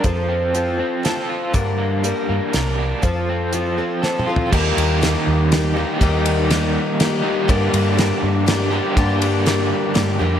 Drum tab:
CC |------------------|------------------|------------------|x-----------------|
RD |------------------|------------------|------------------|---x--x-----x-----|
HH |x-----x-----x-----|x-----x-----x-----|x-----x-----------|------------------|
SD |------------o-----|------------o-----|------------o-----|------o-----o-----|
T2 |------------------|------------------|--------------o---|------------------|
FT |------------------|------------------|----------------o-|------------------|
BD |o-----------------|o-----------------|o-----------------|o-----------------|

CC |------------------|------------------|------------------|
RD |x--x--x-----x-----|x--x--x-----x-----|x--x--x-----x-----|
HH |------------------|------------------|------------------|
SD |------o-----o-----|------o-----o-----|------o-----o-----|
T2 |------------------|------------------|------------------|
FT |------------------|------------------|------------------|
BD |o-----------------|o-----------------|o-----------------|